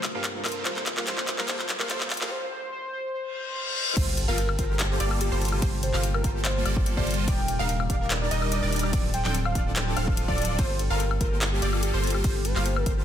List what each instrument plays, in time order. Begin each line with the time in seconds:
Already playing: sub bass G1, ambient pad C3 G3 A3 A#3 F4, felt piano G3 A#3 C4 F4 A4, riser
0.03 clap, closed hi-hat, high woodblock
0.14 sub bass G2, felt piano G3 A#3 C4 F4 G4, supersaw synth G3 A#3 F4 A4 F5, soft synth lead A#4
0.24 clap, closed hi-hat
0.34 felt piano G3 A#3 C4 F4 A4
0.45 sub bass G2, supersaw synth G3 A#3 F4 A4 C5, soft synth lead A#4, clap, closed hi-hat, high woodblock
0.48 closed hi-hat
0.52 closed hi-hat
0.65 sub bass D#1, ambient pad D#3 A#3 D4 G4, felt piano G3 A#3 C4 F4 A4, supersaw synth G3 A#3 F4 A4 C5, soft synth lead C5, clap, closed hi-hat
0.76 clap
0.86 clap, closed hi-hat
0.96 sub bass D#1, felt piano G3 A#3 C4 F4 G4, supersaw synth G3 A#3 F4 A4 F5, soft synth lead A#4, clap
1.06 sub bass D#1, felt piano G3 A#3 C4 F4 A4, supersaw synth G3 A#3 F4 A4 C5, soft synth lead C5, clap, closed hi-hat
1.18 clap
1.28 clap, closed hi-hat
1.38 sub bass D#1, felt piano G3 A#3 C4 F4 G4, supersaw synth G3 A#3 F4 A4 F5, soft synth lead A#4, clap
1.47 sub bass D#1, felt piano G3 A#3 C4 F4 A4, supersaw synth G3 A#3 F4 A4 C5, soft synth lead C5, clap, closed hi-hat
1.59 clap
1.69 clap, closed hi-hat
1.79 sub bass D#1, felt piano G3 A#3 C4 F4 G4, supersaw synth G3 A#3 F4 A4 F5, soft synth lead A#4, clap
1.89 sub bass D#2, felt piano G3 A#3 C4 F4 A4, supersaw synth G3 A#3 F4 A4 C5, soft synth lead C5, clap, closed hi-hat
2.01 clap
2.10 clap, closed hi-hat
2.14 closed hi-hat
2.17 sub bass D1, felt piano G3 A#3, supersaw synth G3 A#3 F4 A4 F5, soft synth lead A#4, closed hi-hat
2.21 felt piano C4 F4 G4, clap
2.31 soft synth lead C5
2.52 soft synth lead C5
2.72 soft synth lead C5
2.93 soft synth lead C5
3.14 soft synth lead C5, reverse cymbal
3.34 soft synth lead C5
3.55 soft synth lead C5
3.76 soft synth lead C5
3.96 sub bass G1, ambient pad C3 G3 A#3 F4 A4, supersaw synth G3 A#3 F4 A4 C5, harp F4, soft synth lead C5, synth pluck C5, kick, closed hi-hat, crash, sub drop
4.08 harp G4
4.17 harp A4, closed hi-hat
4.28 sub bass G1, supersaw synth G3 A#3 F4 A4 F5, harp F4, soft synth lead A#4, synth pluck F5
4.38 harp G4, closed hi-hat
4.49 harp A4, high woodblock
4.59 sub bass G1, supersaw synth G3 A#3 F4 A4 C5, harp F4, soft synth lead A#4, synth pluck C5, kick, closed hi-hat
4.70 harp G4
4.79 harp A4, clap, closed hi-hat
4.90 harp F4, soft synth lead G4
5.00 sub bass G1, supersaw synth G3 A#3 F4 A4 D5, harp G4, synth pluck D5, closed hi-hat
5.11 harp A4, high woodblock
5.21 soft synth lead G4, harp A4, closed hi-hat
5.32 sub bass G1, supersaw synth G3 A#3 F4 A4 C5, harp G4, synth pluck C5
5.41 harp A4, closed hi-hat
5.45 closed hi-hat
5.48 closed hi-hat
5.52 harp F4, soft synth lead G4, high woodblock
5.62 sub bass G1, supersaw synth G3 A#3 F4 A4 C5, synth pluck C5, kick, closed hi-hat, crash
5.73 harp G4
5.83 harp A4, soft synth lead C5, closed hi-hat
5.94 sub bass G1, supersaw synth G3 A#3 F4 A4 F5, harp F4, synth pluck F5, clap
6.03 harp G4, closed hi-hat
6.14 harp A4, soft synth lead A#4, high woodblock
6.24 sub bass G1, supersaw synth G3 A#3 F4 A4 C5, harp F4, synth pluck C5, kick, closed hi-hat
6.35 harp G4
6.45 harp A4, soft synth lead C5, clap, closed hi-hat
6.56 harp F4
6.65 sub bass G1, supersaw synth G3 A#3 F4 A4 D5, harp G4, synth pluck D5, closed hi-hat, high woodblock
6.76 harp A4, soft synth lead C5, kick
6.86 harp A4, closed hi-hat
6.97 sub bass G1, supersaw synth G3 A#3 F4 A4 C5, harp G4, synth pluck C5, soft synth lead D5, kick
7.07 harp A4, closed hi-hat
7.11 closed hi-hat
7.14 harp F4, closed hi-hat
7.28 sub bass D#1, ambient pad D#3 G4 D5, supersaw synth G3 D4 D#4 A#4 D5, harp G4, synth pluck D5, soft synth lead G5, kick, closed hi-hat, crash
7.39 harp A#4
7.48 harp D5, closed hi-hat
7.59 sub bass D#1, supersaw synth G3 D4 D#4 A#4 F5, harp G4, soft synth lead F5, synth pluck F5
7.69 harp A#4, closed hi-hat
7.80 harp D5, high woodblock
7.90 sub bass D#1, supersaw synth G3 D4 D#4 A#4 D5, harp G4, synth pluck D5, soft synth lead F5, kick, closed hi-hat
8.01 harp A#4
8.10 harp D5, clap, closed hi-hat
8.21 harp G4, soft synth lead D5
8.31 sub bass D#1, supersaw synth G3 D4 D#4 A#4 D#5, harp A#4, synth pluck D#5, closed hi-hat
8.42 harp D5, high woodblock
8.52 soft synth lead D5, harp D5, closed hi-hat
8.63 sub bass D#1, supersaw synth G3 D4 D#4 A#4 D5, harp A#4, synth pluck D5
8.73 harp D5, closed hi-hat
8.76 closed hi-hat
8.79 closed hi-hat
8.83 harp G4, soft synth lead D5, high woodblock
8.93 sub bass D1, ambient pad D3 F3 A3 C4 F4, supersaw synth F3 C4 D4 A4 D5, harp F4, synth pluck D5, kick, closed hi-hat, crash
9.04 harp A4
9.14 harp C5, soft synth lead G5, closed hi-hat
9.25 sub bass D1, supersaw synth F3 C4 D4 A4 G5, harp F4, synth pluck G5, clap
9.35 harp A4, closed hi-hat
9.45 harp C5, soft synth lead F5, high woodblock
9.55 sub bass D1, supersaw synth F3 C4 D4 A4 D5, harp F4, synth pluck D5, kick, closed hi-hat
9.66 harp A4
9.76 harp C5, soft synth lead G5, clap, closed hi-hat
9.87 harp F4
9.97 sub bass D1, supersaw synth F3 C4 D4 A4 F5, harp C5, synth pluck F5, closed hi-hat, high woodblock
10.08 harp C5, soft synth lead F5, kick
10.17 harp F4, closed hi-hat
10.28 sub bass D1, supersaw synth F3 C4 D4 A4 D5, synth pluck D5, soft synth lead D5, harp F5, kick
10.38 harp F4, closed hi-hat
10.42 closed hi-hat
10.45 closed hi-hat
10.49 harp F4
10.59 sub bass G1, ambient pad C3 G3 A#3 A4, supersaw synth G3 A#3 F4 A4 C5, harp F4, synth pluck C5, soft synth lead C5, kick, closed hi-hat, crash
10.70 harp G4
10.79 harp A4, closed hi-hat
10.90 sub bass G1, supersaw synth G3 A#3 F4 A4 F5, harp F4, soft synth lead A#4, synth pluck F5
11.00 harp G4, closed hi-hat
11.11 harp A4, high woodblock
11.21 sub bass G1, supersaw synth G3 A#3 F4 A4 C5, harp F4, soft synth lead A#4, synth pluck C5, kick, closed hi-hat
11.32 harp G4
11.41 harp A4, clap, closed hi-hat
11.52 harp F4, soft synth lead G4
11.62 sub bass G1, supersaw synth G3 A#3 F4 A4 D5, harp G4, synth pluck D5, closed hi-hat
11.73 harp A4, high woodblock
11.83 soft synth lead G4, harp A4, closed hi-hat
11.94 sub bass G1, supersaw synth G3 A#3 F4 A4 C5, harp G4, synth pluck C5
12.04 harp A4, closed hi-hat
12.07 closed hi-hat
12.10 soft synth lead G4, harp A4, closed hi-hat
12.15 high woodblock
12.24 sub bass G1, supersaw synth G3 A#3 F4 A4 C5, harp F4, synth pluck C5, kick, closed hi-hat, crash
12.35 harp G4
12.45 harp A4, soft synth lead C5, closed hi-hat
12.56 sub bass G1, supersaw synth G3 A#3 F4 A4 F5, harp F4, synth pluck F5, clap
12.66 harp G4, closed hi-hat
12.76 harp A4, soft synth lead A#4, high woodblock
12.86 sub bass G1, supersaw synth G3 A#3 F4 A4 C5, harp F4, synth pluck C5, kick, closed hi-hat
12.97 harp G4